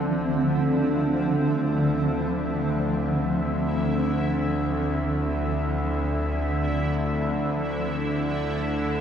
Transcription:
0.00 9.01 D2 medium
0.00 7.95 D3 medium
0.00 9.01 D3 medium
0.00 7.96 F3 medium
0.00 7.95 C4 medium
0.00 9.01 E4 medium
0.00 9.01 E5 medium

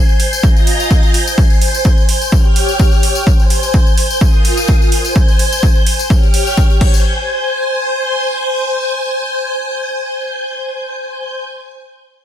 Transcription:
0.00 0.42 C5 medium
0.00 0.42 G#5 medium
0.00 2.29 G6 medium
0.09 tambourine soft
0.20 open hi-hat loud
0.33 tambourine medium
0.43 1.13 F4 medium
0.43 1.13 D#5 medium
0.43 2.30 G#5 medium
0.43 1.13 A#5 medium
0.43 kick loud
0.57 tambourine soft
0.67 open hi-hat loud
0.80 tambourine medium
0.91 kick loud
0.91 tambourine medium
1.03 tambourine soft
1.14 2.31 C5 medium
1.14 open hi-hat loud
1.27 tambourine medium
1.38 kick loud
1.38 tambourine medium
1.50 tambourine soft
1.61 open hi-hat medium
1.74 tambourine medium
1.85 kick loud
1.85 tambourine medium
1.98 tambourine soft
2.09 open hi-hat loud
2.22 tambourine medium
2.32 3.26 G4 medium
2.32 3.26 C#5 medium
2.32 3.26 G5 medium
2.32 3.26 F6 medium
2.32 kick loud
2.32 tambourine medium
2.45 tambourine soft
2.56 open hi-hat loud
2.69 tambourine medium
2.79 kick loud
2.79 tambourine medium
2.92 tambourine soft
3.03 open hi-hat loud
3.15 tambourine medium
3.27 4.20 C5 medium
3.27 4.20 G#5 medium
3.27 6.07 G6 medium
3.27 kick loud
3.27 tambourine medium
3.39 tambourine soft
3.50 open hi-hat medium
3.63 tambourine medium
3.73 kick loud
3.73 tambourine soft
3.87 tambourine soft
3.98 open hi-hat loud
4.11 tambourine medium
4.21 4.91 F4 medium
4.21 4.91 A#4 medium
4.21 6.08 G#5 medium
4.21 4.91 D#6 medium
4.21 kick loud
4.21 tambourine medium
4.34 tambourine soft
4.45 open hi-hat loud
4.57 tambourine medium
4.68 kick loud
4.68 tambourine medium
4.82 tambourine soft
4.92 6.09 C5 medium
4.92 open hi-hat loud
5.05 tambourine medium
5.16 kick loud
5.28 tambourine soft
5.39 open hi-hat loud
5.52 tambourine medium
5.63 kick medium
5.63 tambourine medium
5.75 tambourine soft
5.87 open hi-hat loud
5.99 tambourine medium
6.10 6.80 G4 medium
6.10 6.80 C#5 medium
6.10 6.80 G5 medium
6.10 6.80 F6 medium
6.10 kick loud
6.10 tambourine medium
6.23 tambourine soft
6.34 open hi-hat loud
6.47 tambourine medium
6.57 kick medium
6.57 tambourine medium
6.70 tambourine soft
6.81 11.42 C5 medium
6.81 11.42 G#5 medium
6.81 11.42 G6 medium
6.81 kick loud
6.81 crash medium
6.94 tambourine medium

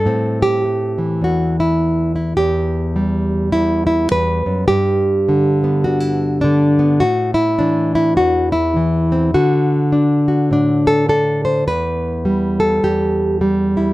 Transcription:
0.00 0.63 G3 medium
0.00 0.40 A4 loud
0.05 1.21 A2 medium
0.05 2.35 C4 medium
0.42 1.22 G4 loud
0.64 2.35 A3 soft
0.98 2.35 E3 medium
1.22 2.37 E2 soft
1.22 1.57 F#4 medium
1.60 2.14 E4 medium
2.16 2.36 E4 soft
2.37 3.52 E2 medium
2.37 3.52 G4 loud
2.96 4.67 G3 medium
3.52 4.10 E2 medium
3.52 3.85 E4 loud
3.87 4.11 E4 medium
4.11 4.46 E2 medium
4.11 4.67 B4 loud
4.46 4.69 F#2 medium
4.68 6.99 G2 medium
4.68 6.00 G4 loud
5.29 5.85 D3 medium
5.64 6.78 B3 soft
5.84 6.43 D3 medium
5.84 6.41 F#4 medium
6.00 7.00 E4 medium
6.41 7.02 D3 medium
6.41 7.01 D4 medium
6.79 6.99 B3 soft
7.00 8.18 A2 medium
7.00 7.34 F#4 loud
7.34 7.94 E4 medium
7.59 8.75 E3 medium
7.59 8.52 D4 medium
7.95 8.17 E4 medium
8.17 9.34 E2 medium
8.17 8.52 F#4 medium
8.52 9.34 E4 medium
8.76 9.32 E3 medium
9.12 9.32 C4 soft
9.34 11.67 D3 medium
9.34 10.27 F#4 loud
9.92 10.51 D4 medium
10.28 11.64 F#4 soft
10.51 11.64 A2 medium
10.51 11.07 D4 medium
10.87 11.08 A4 loud
11.09 11.64 D4 medium
11.09 11.44 A4 loud
11.45 11.67 C5 medium
11.67 12.82 E2 medium
11.67 12.59 B4 loud
12.25 13.40 G3 medium
12.60 13.41 A4 medium
12.83 13.93 E2 medium
12.83 13.93 G4 medium
13.41 13.93 G3 medium
13.77 13.93 E4 soft

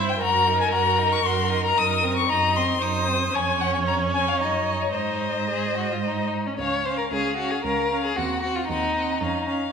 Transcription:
0.00 0.20 G2 soft
0.00 0.21 E4 soft
0.00 0.22 C5 medium
0.00 0.11 E5 medium
0.09 0.22 G5 medium
0.21 0.68 F#2 medium
0.21 0.48 F#4 soft
0.21 2.25 A#4 medium
0.21 0.60 A#5 medium
0.47 0.74 D#4 soft
0.61 0.72 G#5 medium
0.72 1.19 F#2 medium
0.72 1.00 F#4 soft
0.72 1.14 A#5 medium
0.98 1.24 D#4 soft
1.12 1.27 C#6 medium
1.24 1.70 F#2 medium
1.24 1.51 F#4 soft
1.24 1.64 C6 medium
1.50 1.75 D#4 soft
1.65 1.79 A#5 medium
1.75 2.23 F#2 medium
1.75 2.05 D#4 soft
1.75 2.16 D#6 medium
2.03 2.31 C4 soft
2.17 2.31 C#6 medium
2.29 2.75 F#2 medium
2.29 2.58 D#4 soft
2.29 2.80 D#5 medium
2.29 2.58 A#5 medium
2.56 2.81 C4 soft
2.56 2.83 C6 medium
2.81 3.27 F#2 medium
2.81 3.08 D#4 soft
2.81 3.36 C5 medium
2.81 3.37 D#6 medium
3.07 3.32 C4 soft
3.33 4.42 F2 medium
3.33 4.42 C#4 soft
3.33 4.93 C#5 medium
3.33 3.62 G#5 medium
3.61 3.73 F#5 medium
3.74 3.79 G#5 soft
3.87 3.95 A#5 medium
4.14 4.30 G#5 medium
4.28 4.40 F5 soft
4.40 4.95 F#2 soft
4.40 4.93 D#4 soft
4.40 4.84 D#5 soft
4.82 4.95 C#5 soft
4.94 6.36 G#2 soft
4.94 5.43 D#4 soft
4.94 6.29 C5 soft
4.94 6.29 D#5 soft
5.50 5.75 G#4 soft
5.77 5.90 F#4 soft
5.91 5.97 F4 soft
6.04 6.48 D#4 soft
6.46 6.58 C#4 soft
6.58 7.03 C#2 soft
6.58 6.85 C#4 soft
6.58 6.87 C#5 soft
6.58 6.86 F5 soft
6.86 7.12 C#4 soft
6.86 6.97 C5 soft
6.86 7.12 F5 soft
6.98 7.03 A#4 soft
7.11 7.56 C#2 soft
7.11 7.38 C#4 soft
7.11 7.36 G#4 soft
7.11 7.39 F5 soft
7.37 7.65 C#4 soft
7.37 7.52 F#4 soft
7.37 7.64 F5 soft
7.50 7.63 G#4 soft
7.64 8.08 C#2 soft
7.64 7.91 C#4 soft
7.64 8.03 A#4 soft
7.64 7.90 F5 soft
7.91 8.17 C#4 soft
7.91 8.17 F5 soft
8.04 8.18 G#4 soft
8.16 8.61 D#2 soft
8.16 8.43 C4 soft
8.16 8.42 F#4 medium
8.16 8.43 F#5 soft
8.42 8.69 C4 soft
8.42 8.57 F#4 soft
8.42 8.70 F#5 soft
8.55 8.67 F4 soft
8.68 9.13 D#2 soft
8.68 8.95 C4 soft
8.68 9.45 D#4 soft
8.68 8.95 F#5 soft
8.96 9.21 C4 soft
8.96 9.21 F#5 soft
9.21 9.65 F2 soft
9.21 9.47 C#4 soft
9.21 9.48 F5 soft
9.48 9.72 C#4 soft
9.48 9.72 F5 soft

